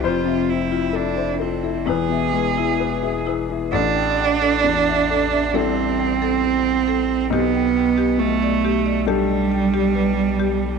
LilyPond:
<<
  \new Staff \with { instrumentName = "Marimba" } { \time 4/4 \key a \minor \tempo 4 = 67 f'16 e''16 c''16 f'16 e''16 e''16 f'16 a'16 e'16 e''16 b'16 e'16 b'16 e''16 e'16 b'16 | a'16 g''16 g''16 a'16 r16 e''16 a'16 e''16 a'16 r16 g''16 a'16 c''16 r16 a'16 r16 | g'16 g''16 g''16 g'16 r16 d''16 g'16 d''16 g'16 r16 g''16 g'16 b'16 r16 g'16 r16 | }
  \new Staff \with { instrumentName = "Upright piano" } { \time 4/4 \key a \minor << { c''4. r8 b'4 r4 | r1 | r1 | } \\ { f,16 c16 c'16 e'16 a'16 c''16 a'16 e'16 e,16 b,16 gis16 e'16 b'16 gis'16 b'16 e'16 | a,,4 e,4 <g e' a'>2 | b,,4 b,4 <g d' a'>2 | } >> }
  \new Staff \with { instrumentName = "Cello" } { \time 4/4 \key a \minor f'8 e'8 d'8 c'8 gis'4. r8 | d'2 c'2 | b4 a4 g2 | }
  \new Staff \with { instrumentName = "Sub bass" } { \clef bass \time 4/4 \key a \minor f,,2 e,,2 | a,,1 | b,,1 | }
>>